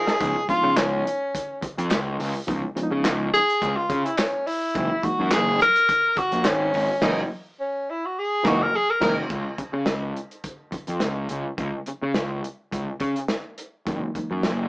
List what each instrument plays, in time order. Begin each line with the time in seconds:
Already playing: horn section F3 D#4 A#4, tenor saxophone G#4
0.07 snare
0.20 picked electric bass C#2, reed electric piano F3 G#3 B3 D#4, kick, closed hi-hat
0.48 reed electric piano F3 G#3 B3 D4, tenor saxophone F4, muted picked electric bass stroke, kick, closed hi-hat
0.56 reed electric piano D#4
0.63 picked electric bass C#3
0.77 picked electric bass C#2, tenor saxophone C#4, snare, clap, closed hi-hat
1.07 closed hi-hat
1.35 kick, closed hi-hat
1.62 muted picked electric bass stroke, kick, closed hi-hat
1.78 picked electric bass F2, closed hi-hat
1.91 picked electric bass C#2, snare, clap, closed hi-hat
2.20 picked electric bass C#2, open hi-hat
2.47 picked electric bass C#2, reed electric piano F3 G#3 B3 D#4, kick, closed hi-hat
2.76 reed electric piano F3 G#3 B3 D4, muted picked electric bass stroke, closed hi-hat
2.83 reed electric piano D#4
2.91 picked electric bass C#3
3.05 picked electric bass C#2, snare, clap, closed hi-hat
3.33 tenor saxophone G#4, closed hi-hat
3.50 closed hi-hat
3.62 picked electric bass C#2, kick, closed hi-hat
3.77 tenor saxophone F4
3.90 picked electric bass C#3, kick, closed hi-hat
4.05 tenor saxophone E4, closed hi-hat
4.18 tenor saxophone C#4, snare, clap, closed hi-hat
4.47 tenor saxophone E4, open hi-hat
4.74 picked electric bass F#1, reed electric piano E3 G#3 A#3 D#4, kick, closed hi-hat
5.03 reed electric piano E3 G#3 A#3 D#4, tenor saxophone F#4, muted picked electric bass stroke, kick, closed hi-hat
5.20 picked electric bass F#2
5.31 picked electric bass F#1, tenor saxophone G#4, snare, clap, closed hi-hat
5.33 clap
5.61 tenor saxophone A#4, closed hi-hat
5.76 closed hi-hat
5.89 kick, closed hi-hat
6.17 tenor saxophone F#4, muted picked electric bass stroke, kick, closed hi-hat
6.32 picked electric bass A#1, closed hi-hat
6.45 picked electric bass G#1, tenor saxophone C#4, snare, clap, closed hi-hat
6.74 picked electric bass G#1, open hi-hat
7.01 picked electric bass F#1, reed electric piano E3 G#3 A#3 D#4, horn section E3 D#4 A#4, kick, snare, crash
7.60 tenor saxophone C#4
7.90 tenor saxophone E4
8.05 tenor saxophone F#4
8.19 tenor saxophone G#4
8.43 picked electric bass F#1, reed electric piano E3 G#3 A#3 D#4, horn section E3 D#4 A#4, kick, snare
8.48 tenor saxophone F#4
8.63 tenor saxophone A#4
8.76 tenor saxophone G#4
8.90 tenor saxophone A#4
9.01 picked electric bass F#1, reed electric piano E3 G#3 A#3 D#4, horn section D#4 A#4, kick, snare, crash
9.30 picked electric bass C#2, kick, closed hi-hat
9.58 muted picked electric bass stroke, kick, closed hi-hat
9.73 picked electric bass C#3
9.86 picked electric bass C#2, snare, closed hi-hat
10.16 closed hi-hat
10.31 closed hi-hat
10.44 kick, closed hi-hat
10.72 muted picked electric bass stroke, kick, closed hi-hat
10.87 picked electric bass F2, closed hi-hat
11.00 picked electric bass C#2, snare, closed hi-hat
11.29 picked electric bass C#2, closed hi-hat
11.58 picked electric bass C#2, kick, closed hi-hat
11.86 muted picked electric bass stroke, closed hi-hat
12.02 picked electric bass C#3
12.14 picked electric bass C#2, snare, closed hi-hat
12.44 closed hi-hat
12.72 picked electric bass C#2, kick, closed hi-hat
13.00 picked electric bass C#3, kick, closed hi-hat
13.16 closed hi-hat
13.28 snare, closed hi-hat
13.58 closed hi-hat
13.86 picked electric bass F#1, reed electric piano E3 G#3 A#3 D#4, kick, closed hi-hat
14.15 muted picked electric bass stroke, kick, closed hi-hat
14.31 picked electric bass F#2
14.43 picked electric bass F#1, snare, closed hi-hat